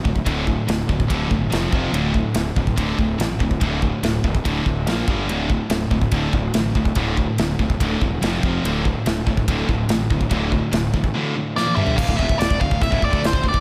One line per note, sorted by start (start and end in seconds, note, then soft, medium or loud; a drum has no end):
0.04 0.20 D1 medium
0.04 0.23 D2 medium
0.04 0.24 A2 medium
0.04 kick medium
0.16 kick medium
0.25 0.55 D1 medium
0.25 0.45 D2 medium
0.25 0.45 A2 medium
0.25 0.45 D3 loud
0.25 kick medium
0.25 ride bell medium
0.47 0.65 D2 medium
0.47 0.66 A2 medium
0.47 kick medium
0.68 0.83 D1 medium
0.68 0.87 D2 medium
0.68 0.87 A2 medium
0.68 snare loud
0.68 ride bell medium
0.89 1.03 D1 medium
0.89 1.08 D2 medium
0.89 1.08 A2 medium
0.89 kick medium
1.00 kick medium
1.10 1.25 D1 medium
1.10 1.29 D2 medium
1.10 1.30 A2 medium
1.10 1.30 D3 medium
1.10 kick loud
1.10 ride bell medium
1.31 1.45 G1 medium
1.31 1.49 D2 medium
1.31 1.50 A2 medium
1.31 kick medium
1.50 1.67 F1 medium
1.50 1.70 F2 medium
1.50 1.71 C3 medium
1.50 1.71 F3 loud
1.50 snare loud
1.50 ride bell medium
1.72 1.87 F1 medium
1.72 1.92 F2 medium
1.72 1.92 C3 medium
1.72 1.92 F3 medium
1.72 kick loud
1.92 2.22 D1 medium
1.92 2.12 D2 medium
1.92 2.12 A2 medium
1.92 2.13 D3 loud
1.92 ride bell medium
2.14 2.33 D2 medium
2.14 2.33 A2 medium
2.14 kick medium
2.35 2.50 D1 medium
2.35 2.54 D2 medium
2.35 2.54 A2 medium
2.35 snare loud
2.35 ride bell medium
2.56 2.71 D1 medium
2.56 2.75 D2 medium
2.56 2.76 A2 medium
2.56 kick medium
2.67 kick medium
2.76 2.92 D1 medium
2.76 2.96 D2 medium
2.76 2.97 A2 medium
2.76 2.97 D3 loud
2.76 kick medium
2.76 ride bell medium
2.98 3.13 D1 medium
2.98 3.17 D2 medium
2.98 3.17 A2 medium
2.98 kick medium
3.18 3.34 A1 medium
3.18 3.38 D2 medium
3.18 3.38 A2 medium
3.18 snare loud
3.18 ride bell medium
3.39 3.55 D1 medium
3.39 3.59 D2 medium
3.39 3.59 A2 medium
3.39 kick medium
3.51 kick medium
3.60 3.91 D1 loud
3.60 3.80 D2 medium
3.60 3.81 A2 medium
3.60 3.81 D3 loud
3.60 kick medium
3.60 ride bell medium
3.82 4.01 D2 medium
3.82 4.01 A2 medium
3.82 kick medium
4.03 4.18 D1 medium
4.03 4.22 D2 medium
4.03 4.22 A2 medium
4.03 snare loud
4.03 ride bell medium
4.24 4.39 D1 medium
4.24 4.43 D2 medium
4.24 4.43 A2 medium
4.24 kick medium
4.35 kick medium
4.45 4.60 D1 medium
4.45 4.65 D2 medium
4.45 4.65 A2 medium
4.45 4.65 D3 loud
4.45 kick loud
4.45 ride bell medium
4.66 4.86 D1 medium
4.66 4.85 D2 medium
4.66 4.85 A2 medium
4.66 kick medium
4.86 5.01 A#1 medium
4.86 5.07 A#2 medium
4.86 5.07 F3 medium
4.86 5.07 A#3 medium
4.86 snare loud
4.86 ride bell medium
5.08 5.29 G1 medium
5.08 5.28 G2 medium
5.08 5.28 D3 medium
5.08 5.28 G3 medium
5.08 kick loud
5.29 5.58 D1 medium
5.29 5.48 D2 medium
5.29 5.49 A2 medium
5.29 5.49 D3 medium
5.29 ride bell medium
5.49 5.68 D2 medium
5.49 5.69 A2 medium
5.49 kick medium
5.69 5.85 D1 medium
5.69 5.89 D2 medium
5.69 5.90 A2 medium
5.69 snare loud
5.69 ride bell medium
5.91 6.06 D1 medium
5.91 6.10 D2 medium
5.91 6.10 A2 medium
5.91 kick medium
6.01 kick medium
6.12 6.27 D1 medium
6.12 6.32 D2 medium
6.12 6.33 A2 medium
6.12 6.33 D3 loud
6.12 kick medium
6.12 ride bell medium
6.33 6.48 D1 medium
6.33 6.52 D2 medium
6.33 6.53 A2 medium
6.33 kick medium
6.54 6.69 A1 medium
6.54 6.73 D2 medium
6.54 6.73 A2 medium
6.54 snare loud
6.54 ride bell medium
6.75 6.90 D1 medium
6.75 6.94 D2 medium
6.75 6.94 A2 medium
6.75 kick medium
6.85 kick medium
6.95 7.25 D1 medium
6.95 7.16 D2 medium
6.95 7.16 A2 medium
6.95 7.16 D3 loud
6.95 kick medium
6.95 ride bell medium
7.17 7.36 D2 medium
7.17 7.36 A2 medium
7.17 kick medium
7.38 7.53 D1 medium
7.38 7.57 D2 medium
7.38 7.58 A2 medium
7.38 snare loud
7.38 ride bell medium
7.59 7.73 D1 medium
7.59 7.78 D2 medium
7.59 7.78 A2 medium
7.59 kick medium
7.70 kick medium
7.80 7.95 D1 medium
7.80 8.00 D2 medium
7.80 8.00 A2 loud
7.80 8.00 D3 loud
7.80 kick loud
7.80 ride bell medium
8.01 8.16 E1 medium
8.01 8.20 D2 medium
8.01 8.20 A2 medium
8.01 kick medium
8.22 8.37 F1 medium
8.22 8.42 F2 medium
8.22 8.42 C3 medium
8.22 8.42 F3 loud
8.22 snare loud
8.22 ride bell medium
8.43 8.58 F1 medium
8.43 8.63 F2 medium
8.43 8.63 C3 loud
8.43 8.63 F3 medium
8.43 kick loud
8.64 8.93 D1 medium
8.64 8.84 D2 medium
8.64 8.84 A2 loud
8.64 8.84 D3 loud
8.64 ride bell medium
8.85 9.04 D2 medium
8.85 9.04 A2 medium
8.85 kick medium
9.06 9.21 D1 medium
9.06 9.25 D2 medium
9.06 9.25 A2 medium
9.06 snare loud
9.06 ride bell medium
9.26 9.41 D1 medium
9.26 9.45 D2 medium
9.26 9.46 A2 medium
9.26 kick medium
9.37 kick medium
9.48 9.62 D1 medium
9.48 9.67 D2 medium
9.48 9.68 A2 medium
9.48 9.68 D3 loud
9.48 kick loud
9.48 ride bell medium
9.69 9.83 D1 medium
9.69 9.88 D2 medium
9.69 9.88 A2 medium
9.69 kick medium
9.89 10.04 A1 medium
9.89 10.08 D2 medium
9.89 10.08 A2 medium
9.89 snare loud
9.89 ride bell medium
10.10 10.25 D1 medium
10.10 10.28 D2 medium
10.10 10.29 A2 medium
10.10 kick medium
10.21 kick medium
10.30 10.60 D1 medium
10.30 10.50 D2 medium
10.30 10.50 A2 loud
10.30 10.51 D3 loud
10.30 kick medium
10.30 ride bell medium
10.51 10.70 D2 medium
10.51 10.71 A2 medium
10.51 kick medium
10.72 10.87 D1 medium
10.72 10.91 D2 medium
10.72 10.91 A2 medium
10.72 snare loud
10.72 ride bell medium
10.94 11.08 A1 medium
10.94 11.12 D2 medium
10.94 11.13 A2 medium
10.94 kick medium
11.04 kick medium
11.14 11.34 D2 medium
11.14 11.34 A2 loud
11.14 11.35 D3 medium
11.35 11.54 D2 medium
11.35 11.54 A2 medium
11.56 11.76 A#2 loud
11.56 11.76 F3 medium
11.56 11.77 A#3 loud
11.56 11.75 D5 medium
11.56 snare medium
11.66 high tom medium
11.76 11.96 G2 medium
11.76 11.97 D3 medium
11.76 11.97 G3 medium
11.76 11.96 E5 medium
11.76 mid tom medium
11.87 floor tom medium
11.97 12.08 D1 medium
11.97 12.07 D2 loud
11.97 12.07 A2 medium
11.97 12.16 F5 loud
11.97 kick loud
11.97 crash loud
11.97 crash medium
12.08 12.18 D1 medium
12.08 12.18 D2 medium
12.08 12.19 A2 medium
12.08 kick medium
12.17 12.29 F1 medium
12.17 12.28 F2 medium
12.17 12.28 C3 loud
12.17 12.39 E5 medium
12.17 kick medium
12.28 12.39 D1 medium
12.28 12.37 D2 medium
12.28 12.38 A2 medium
12.28 kick medium
12.39 12.49 D1 medium
12.39 12.47 D2 medium
12.39 12.47 A2 medium
12.39 12.61 D5 medium
12.39 snare loud
12.39 crash medium
12.48 12.60 D1 medium
12.48 12.58 D2 medium
12.48 12.59 A2 medium
12.48 kick loud
12.60 12.71 D1 medium
12.60 12.70 D2 medium
12.60 12.70 A2 medium
12.60 12.82 F5 loud
12.60 kick medium
12.71 12.81 D1 medium
12.71 12.80 D2 medium
12.71 12.80 A2 medium
12.71 kick medium
12.81 12.91 D1 medium
12.81 12.90 D2 medium
12.81 12.90 A2 medium
12.81 13.03 E5 loud
12.81 kick loud
12.81 crash medium
12.91 13.01 D1 loud
12.91 13.00 D2 medium
12.91 13.01 A2 loud
12.91 kick medium
13.01 13.12 D1 medium
13.01 13.12 D2 medium
13.01 13.10 A2 medium
13.01 13.23 D5 medium
13.01 kick medium
13.10 13.21 D2 loud
13.10 13.21 D3 loud
13.10 13.22 A3 loud
13.10 kick medium
13.22 13.32 D1 medium
13.22 13.31 D2 medium
13.22 13.32 A2 medium
13.22 snare loud
13.22 crash medium
13.26 13.44 C5 medium
13.33 13.43 D1 medium
13.33 13.42 D2 medium
13.33 13.42 A2 medium
13.33 kick loud
13.43 13.54 D1 medium
13.43 13.52 D2 medium
13.43 13.51 A2 medium
13.43 kick medium
13.48 13.60 D5 medium
13.53 13.60 D1 medium
13.53 13.60 D2 medium
13.53 13.60 A2 medium
13.53 kick medium